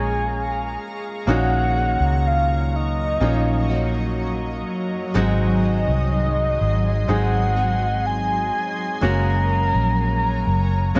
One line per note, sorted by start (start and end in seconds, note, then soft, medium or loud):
0.00 0.76 A#1 medium
0.00 1.18 G#3 medium
0.00 1.28 G#3 soft
0.00 1.19 A#3 medium
0.00 1.19 C#4 medium
0.00 1.29 C#4 soft
0.00 1.19 F4 medium
0.00 1.24 G#4 medium
0.00 1.28 G#4 soft
0.00 1.24 F5 medium
0.00 0.81 G#5 loud
0.00 5.11 A#5 medium
0.00 5.11 C#6 medium
1.27 1.96 A#1 loud
1.27 3.21 A#2 medium
1.27 2.69 A#2 medium
1.27 3.20 D#3 medium
1.27 11.00 F#3 medium
1.27 3.11 A#3 medium
1.27 3.20 A#3 medium
1.27 3.12 C#4 medium
1.27 3.21 C#4 medium
1.27 3.12 D#4 medium
1.27 3.12 F#4 medium
1.27 3.22 F#4 medium
1.27 8.98 D#5 medium
1.27 2.28 F#5 loud
2.00 3.18 C#2 medium
2.27 2.77 F5 loud
2.76 4.20 D#5 medium
3.20 4.63 A#1 loud
3.20 3.69 D#3 medium
3.20 5.05 A#3 medium
3.20 3.70 A#3 medium
3.20 5.05 C#4 medium
3.20 3.69 C#4 medium
3.20 5.05 D#4 medium
3.20 5.06 F4 medium
3.20 3.68 F#4 medium
3.69 5.15 A#3 soft
3.69 5.15 C#4 soft
3.69 5.17 F#4 soft
5.14 5.84 G#1 loud
5.14 7.08 G#2 medium
5.14 6.56 G#2 medium
5.14 7.08 D#3 medium
5.14 7.08 F#3 medium
5.14 6.99 G#3 medium
5.14 7.08 G#3 medium
5.14 6.99 C4 medium
5.14 7.09 C4 medium
5.14 6.99 D#4 medium
5.14 6.99 F#4 medium
5.14 7.10 G#4 medium
5.14 7.11 D#5 loud
5.14 11.00 G#5 medium
5.14 8.99 C6 medium
5.88 6.56 C2 medium
6.61 7.06 G#1 medium
7.08 8.50 G#1 loud
7.08 7.57 F#3 medium
7.08 8.92 G#3 medium
7.08 7.56 G#3 medium
7.08 8.92 C4 medium
7.08 7.56 C4 medium
7.08 8.93 D#4 medium
7.08 8.93 G#4 medium
7.08 7.55 G#4 medium
7.08 8.08 F#5 loud
7.56 9.01 F#3 soft
7.56 9.02 G#3 soft
7.56 9.02 C4 soft
7.56 9.04 G#4 soft
8.06 9.03 G#5 loud
9.01 9.71 F#1 loud
9.01 10.94 F#3 medium
9.01 10.86 G#3 medium
9.01 10.86 A#3 medium
9.01 10.95 A#3 medium
9.01 10.86 C#4 medium
9.01 10.96 C#4 medium
9.01 10.86 F#4 medium
9.01 10.97 G#4 medium
9.01 11.00 C#5 medium
9.01 11.00 A#5 medium
9.01 11.00 A#5 loud
9.75 10.43 A#1 medium
10.47 10.92 F#1 medium
10.95 11.00 F#1 loud
10.95 11.00 F#3 medium
10.95 11.00 G#3 medium
10.95 11.00 A#3 medium
10.95 11.00 C#4 medium
10.95 11.00 F#4 medium